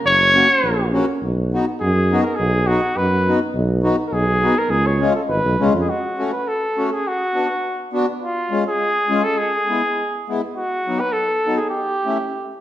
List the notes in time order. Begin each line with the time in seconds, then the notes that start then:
0.04 F#1 C#5
0.34 A#3 C#4 F#4
0.63 A#1
0.92 A#3 C#4 F#4
1.22 B1
1.54 B3 D#4 F#4
1.80 F#2 G#4
2.12 B3 D#4 F#4
2.22 A#4
2.35 G#4
2.40 B1
2.67 B3 D#4 F#4
2.97 F#2 B4
3.27 B3 D#4 F#4
3.55 B1
3.83 B3 D#4 F#4
4.07 A#4
4.12 B1 G#4
4.43 B3 D#4 F#4
4.58 A#4
4.69 C#2 G#4
4.87 C#5
5.00 G#3 C#4 F4
5.15 A4
5.28 G#1 B4
5.45 B1
5.60 C#2 G#3 C#4 F4
5.74 F2
5.81 G#4
5.89 F#4
6.18 A3 C#4 F#4
6.32 B4
6.48 A4
6.77 A3 C#4 F#4
6.89 A4
6.93 G#4
7.07 F#4
7.34 B3 D4 F#4
7.92 B3 D4 F#4
8.22 F4
8.51 G#3 C#4 F4
8.68 G#4
9.09 G#3 C#4 F4
9.24 A4
9.38 G#4
9.68 G#3 B3 E4
10.28 G#3 B3 E4
10.55 F#4
10.87 F#3 B3 D#4
11.00 B4
11.12 A4
11.46 F#3 B3 D#4
11.57 G#4
11.70 G4
12.05 A3 C#4 E4